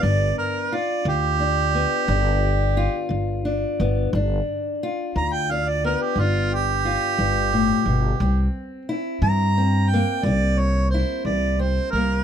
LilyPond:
<<
  \new Staff \with { instrumentName = "Harmonica" } { \time 12/8 \key g \mixolydian \tempo 4. = 59 d''8 bes'8 d''8 g'2. r4. | r4. bes''16 g''16 f''16 d''16 bes'16 g'16 f'8 g'2~ g'8~ | g'8 r4 bes''4 g''8 d''8 cis''8 c''8 d''8 c''8 bes'8 | }
  \new Staff \with { instrumentName = "Steel-string acoustic guitar" } { \time 12/8 \key g \mixolydian << { d'4 f'4 d'8 b8 d'4 f'4 d'8 b8 | d'4 f'4 d'8 b8 d'4 f'2 | c'4 e'4 c'8 bes8 c'4 e'4 c'8 bes8 | } \\ { g,4 r8 d4 r8 g,4 r8 d4 r8 | g,4 r8 d4 r8 g,4 r8 g,8 a,8 b,8 | c4 r8 e4 r8 c4 r8 e4 r8 | } >> }
  \new Staff \with { instrumentName = "Upright bass" } { \clef bass \time 12/8 \key g \mixolydian g,,8 r4 d,4. g,,4. g,,4 g,,8 | g,,8 r4 d,4. g,,4. g,,4 g,,8 | c,8 r4 g,4. c,4. c,4 c,8 | }
>>